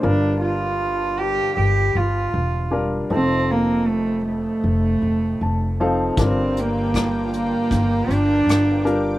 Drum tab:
HH |--------|--------|xxxxxxxx|
SD |--------|--------|--r---r-|
BD |--------|--------|o-o-o---|